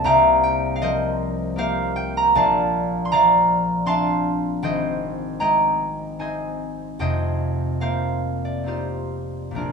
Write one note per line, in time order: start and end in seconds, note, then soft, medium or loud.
0.00 2.36 G3 medium
0.00 1.55 A#3 medium
0.00 1.56 G4 medium
0.00 0.82 A#4 medium
0.04 2.36 C2 medium
0.04 0.74 F5 medium
0.04 0.42 G5 medium
0.04 2.16 A#5 loud
0.43 1.95 G5 loud
0.76 0.86 F5 medium
0.82 3.11 F3 medium
0.82 1.57 A#4 medium
0.82 1.58 C5 medium
0.82 2.37 D#5 loud
1.56 4.65 A#3 medium
1.56 2.37 G4 medium
1.56 4.66 A#4 medium
1.56 4.63 C5 medium
1.56 2.36 F5 loud
1.96 2.37 G5 loud
2.17 2.48 A#5 loud
2.35 4.66 A#1 medium
2.35 3.12 D5 medium
2.35 3.12 F5 medium
2.35 3.86 A5 loud
3.05 3.15 C6 medium
3.12 4.66 F3 medium
3.12 4.66 D5 medium
3.12 3.86 F5 medium
3.12 4.65 A#5 loud
3.86 6.18 C4 medium
3.86 4.66 D4 medium
3.86 4.66 F5 medium
3.86 4.66 A5 medium
3.86 7.76 C6 loud
4.62 7.01 G#1 medium
4.62 6.19 C5 medium
4.62 5.40 D#5 medium
4.62 5.39 G5 loud
5.40 7.01 G#3 medium
5.40 6.20 D#5 medium
5.40 6.99 G5 medium
5.40 6.74 A#5 loud
6.19 8.63 C4 soft
6.19 8.65 D#4 medium
6.19 7.00 C5 medium
6.19 7.00 D#5 soft
6.19 7.02 G#5 medium
6.99 9.61 F1 medium
6.99 9.61 F2 medium
6.99 7.81 C5 medium
6.99 9.62 D#5 medium
6.99 9.61 G5 medium
7.80 9.51 A#3 soft
7.80 9.55 A#4 medium
7.80 8.65 C5 medium
7.80 9.72 F5 medium
8.45 8.82 D5 medium
8.64 9.52 C4 soft
8.64 9.60 D#4 soft
8.64 9.56 F4 medium
8.64 9.61 G4 soft
8.68 9.72 C5 medium
9.51 9.72 A#1 soft
9.51 9.72 A#2 soft
9.51 9.72 A#3 soft
9.51 9.72 C4 soft
9.56 9.72 D4 soft
9.56 9.72 F4 soft
9.56 9.72 A#4 medium